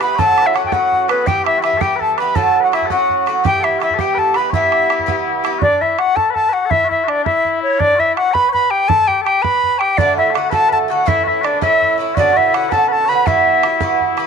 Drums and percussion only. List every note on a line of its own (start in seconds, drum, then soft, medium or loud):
0.01 bodhran medium
0.19 bodhran medium
0.38 bodhran medium
0.56 bodhran medium
0.64 bodhran soft
0.72 bodhran medium
0.92 bodhran soft
1.09 bodhran medium
1.27 bodhran medium
1.46 bodhran medium
1.64 bodhran medium
1.73 bodhran soft
1.81 bodhran medium
2.01 bodhran soft
2.18 bodhran medium
2.36 bodhran medium
2.73 bodhran medium
2.82 bodhran soft
2.90 bodhran medium
3.10 bodhran soft
3.27 bodhran medium
3.45 bodhran medium
3.64 bodhran medium
3.82 bodhran medium
3.91 bodhran soft
3.99 bodhran medium
4.18 bodhran soft
4.34 bodhran medium
4.53 bodhran medium
4.72 bodhran medium
4.90 bodhran medium
4.99 bodhran soft
5.08 bodhran medium
5.45 bodhran medium
5.62 bodhran medium
5.82 bodhran soft
5.99 bodhran medium
6.17 bodhran medium
6.36 bodhran soft
6.71 bodhran medium
6.91 bodhran soft
7.08 bodhran medium
7.26 bodhran medium
7.45 bodhran soft
7.80 bodhran medium
7.99 bodhran soft
8.17 bodhran medium
8.35 bodhran medium
8.54 bodhran soft
8.90 bodhran medium
9.09 bodhran soft
9.26 bodhran medium
9.44 bodhran medium
9.63 bodhran soft
9.81 bodhran medium
9.98 bodhran medium
10.17 bodhran soft
10.35 bodhran medium
10.52 bodhran medium
10.72 bodhran soft
11.08 bodhran medium
11.27 bodhran soft
11.44 bodhran medium
11.62 bodhran medium
11.82 bodhran soft
12.17 bodhran medium
12.37 bodhran soft
12.54 bodhran medium
12.72 bodhran medium
13.27 bodhran medium
13.46 bodhran soft
13.63 bodhran medium
13.81 bodhran medium
14.01 bodhran soft
14.18 bodhran medium